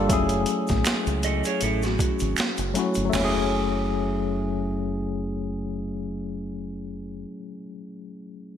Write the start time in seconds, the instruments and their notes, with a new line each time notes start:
Already playing: tine electric piano G3 A#3 D4 F4 A4
0.08 fingered electric bass F#1, tine electric piano F#3 A3 C#4, kick, closed hi-hat, shaker
0.12 tine electric piano E4 G#4
0.29 closed hi-hat, shaker
0.46 closed hi-hat, shaker
0.67 fingered electric bass A1, kick, snare, closed hi-hat, shaker
0.85 finger snap, snare, closed hi-hat, shaker
1.06 fingered electric bass C#2, closed hi-hat, shaker
1.23 clean electric guitar A4 D#5, closed hi-hat, shaker
1.44 clean electric guitar G#4 C#5, closed hi-hat, shaker
1.61 fingered electric bass A1, clean electric guitar E4 A4, closed hi-hat, shaker
1.82 clean electric guitar C#4 F#4, snare, closed hi-hat, shaker
1.98 kick, closed hi-hat, shaker
2.19 fingered electric bass G#1, closed hi-hat, shaker
2.37 finger snap, snare, closed hi-hat, shaker
2.57 fingered electric bass F#1, closed hi-hat, shaker
2.74 tine electric piano F#3 A3 C#4 E4, closed hi-hat, shaker
2.79 tine electric piano F#4
2.94 fingered electric bass G1, closed hi-hat, shaker
3.05 tine electric piano F#3
3.10 tine electric piano A3, floor tom, crash, shaker
3.14 fingered electric bass F#1, tine electric piano C#4, snare
3.20 tine electric piano E4
3.25 tine electric piano G#4